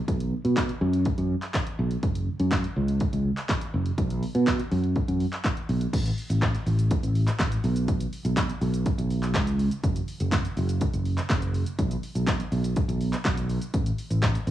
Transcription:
0.08 fretless electric bass B1, kick, closed hi-hat
0.20 closed hi-hat
0.44 fretless electric bass B2, closed hi-hat
0.56 kick, snare, clap, closed hi-hat
0.69 closed hi-hat
0.81 fretless electric bass F#2
0.93 closed hi-hat
1.05 kick, closed hi-hat
1.18 fretless electric bass F#2, closed hi-hat
1.42 clap, closed hi-hat
1.54 kick, snare, clap, closed hi-hat
1.67 closed hi-hat
1.79 fretless electric bass B1
1.91 closed hi-hat
2.03 fretless electric bass F#1, kick, closed hi-hat
2.15 closed hi-hat
2.40 fretless electric bass F#2, closed hi-hat
2.51 kick, snare, clap, closed hi-hat
2.64 closed hi-hat
2.76 fretless electric bass C#2
2.88 closed hi-hat
3.00 kick, closed hi-hat
3.13 fretless electric bass C#2, closed hi-hat
3.37 clap, closed hi-hat
3.49 kick, snare, clap, closed hi-hat
3.61 closed hi-hat
3.74 fretless electric bass F#1
3.86 closed hi-hat
3.98 fretless electric bass B1, kick, closed hi-hat
4.10 closed hi-hat
4.23 open hi-hat
4.35 fretless electric bass B2, closed hi-hat
4.47 kick, snare, clap, closed hi-hat
4.59 closed hi-hat
4.71 fretless electric bass F#2, open hi-hat
4.84 closed hi-hat
4.96 kick, closed hi-hat
5.08 fretless electric bass F#2, closed hi-hat
5.20 open hi-hat
5.33 clap, closed hi-hat
5.44 kick, snare, clap, closed hi-hat
5.57 closed hi-hat
5.69 fretless electric bass B1, open hi-hat
5.81 closed hi-hat
5.93 fretless electric bass A1, kick, closed hi-hat, crash, shaker
6.06 closed hi-hat, shaker
6.18 open hi-hat, shaker
6.30 fretless electric bass A1, closed hi-hat, shaker
6.42 kick, snare, clap, closed hi-hat, shaker
6.55 closed hi-hat, shaker
6.66 fretless electric bass A1, open hi-hat, shaker
6.79 closed hi-hat, shaker
6.91 kick, closed hi-hat, shaker
7.03 fretless electric bass A1, closed hi-hat, shaker
7.15 open hi-hat, shaker
7.28 clap, closed hi-hat, shaker
7.39 fretless electric bass A1, kick, snare, clap, closed hi-hat, shaker
7.52 closed hi-hat, shaker
7.64 fretless electric bass B1, open hi-hat, shaker
7.76 closed hi-hat, shaker
7.88 kick, closed hi-hat, shaker
8.01 closed hi-hat, shaker
8.13 open hi-hat, shaker
8.25 fretless electric bass B1, closed hi-hat, shaker
8.37 kick, snare, clap, closed hi-hat, shaker
8.50 closed hi-hat, shaker
8.61 fretless electric bass B1, open hi-hat, shaker
8.74 closed hi-hat, shaker
8.86 kick, closed hi-hat, shaker
8.98 fretless electric bass B1, closed hi-hat, shaker
9.11 open hi-hat, shaker
9.23 clap, closed hi-hat, shaker
9.34 fretless electric bass C#2, kick, snare, clap, closed hi-hat, shaker
9.47 closed hi-hat, shaker
9.59 open hi-hat, shaker
9.71 closed hi-hat, shaker
9.83 fretless electric bass F#1, kick, closed hi-hat, shaker
9.96 closed hi-hat, shaker
10.08 open hi-hat, shaker
10.20 fretless electric bass F#1, closed hi-hat, shaker
10.32 kick, snare, clap, closed hi-hat, shaker
10.45 closed hi-hat, shaker
10.57 fretless electric bass F#1, open hi-hat, shaker
10.69 closed hi-hat, shaker
10.81 kick, closed hi-hat, shaker
10.93 fretless electric bass F#1, closed hi-hat, shaker
11.05 open hi-hat, shaker
11.18 clap, closed hi-hat, shaker
11.30 fretless electric bass F#1, kick, snare, clap, closed hi-hat, shaker
11.42 closed hi-hat, shaker
11.54 open hi-hat, shaker
11.66 closed hi-hat, shaker
11.79 fretless electric bass B1, kick, closed hi-hat, shaker
11.91 closed hi-hat, shaker
12.03 open hi-hat, shaker
12.15 fretless electric bass B1, closed hi-hat, shaker
12.27 kick, snare, clap, closed hi-hat, shaker
12.40 closed hi-hat, shaker
12.52 fretless electric bass B1, open hi-hat, shaker
12.64 closed hi-hat, shaker
12.76 kick, closed hi-hat, shaker
12.88 fretless electric bass B1, closed hi-hat, shaker
13.01 open hi-hat, shaker
13.13 clap, closed hi-hat, shaker
13.25 fretless electric bass B1, kick, snare, clap, closed hi-hat, shaker
13.37 closed hi-hat, shaker
13.49 open hi-hat, shaker
13.61 closed hi-hat, shaker
13.74 fretless electric bass A1, kick, closed hi-hat, shaker
13.86 closed hi-hat, shaker
13.98 open hi-hat, shaker
14.10 fretless electric bass A1, closed hi-hat, shaker
14.22 kick, snare, clap, closed hi-hat, shaker
14.35 closed hi-hat, shaker
14.47 fretless electric bass A1, open hi-hat, shaker

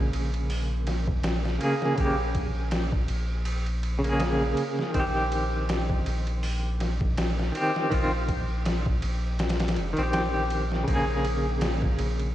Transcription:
Already playing: sub bass A#1, clean electric guitar C#3 A#3 G#4
0.13 sub bass A#1, ride
0.34 ride
0.50 open hi-hat
0.87 snare, ride
1.08 kick
1.23 snare, ride
1.45 snare
1.58 clean electric guitar C#3 A#3, ride
1.63 clean electric guitar G#4
1.82 snare
1.95 sub bass A#1, clean electric guitar C#3 A#3, kick, ride
2.00 clean electric guitar G4
2.35 kick, ride
2.71 snare, ride
2.93 kick
3.08 sub bass A#1, ride
3.45 ride
3.66 ride
3.83 ride
3.99 clean electric guitar C#3
4.04 clean electric guitar A#3, ride
4.09 clean electric guitar G#4
4.20 snare, ride
4.57 ride
4.79 snare
4.90 clean electric guitar D#3
4.94 sub bass A#1, clean electric guitar C4, kick, ride
5.00 clean electric guitar G4
5.32 ride
5.69 snare, ride
5.90 kick
6.06 sub bass A#1, ride
6.27 ride
6.43 open hi-hat
6.80 snare, ride
7.01 kick
7.17 snare, ride
7.39 snare
7.52 clean electric guitar D#3 C4, ride
7.57 clean electric guitar G4
7.76 snare
7.90 sub bass A#1, clean electric guitar D#3 C4, kick, ride
7.94 clean electric guitar F4
8.28 kick, ride
8.65 snare, ride
8.86 kick
9.02 sub bass A#1, ride
9.39 snare, ride
9.49 snare, ride
9.60 snare, ride
9.68 snare, ride
9.76 sub bass F1, ride
9.93 clean electric guitar D#3, ride
9.98 sub bass A#1, clean electric guitar C4
10.03 clean electric guitar G4
10.13 snare, ride
10.50 ride
10.72 snare
10.84 clean electric guitar C#3, kick, ride
10.88 sub bass A#1, clean electric guitar A#3
10.94 clean electric guitar G#4
11.25 ride
11.61 snare, ride
11.82 kick
11.99 sub bass A#1, ride
12.19 ride

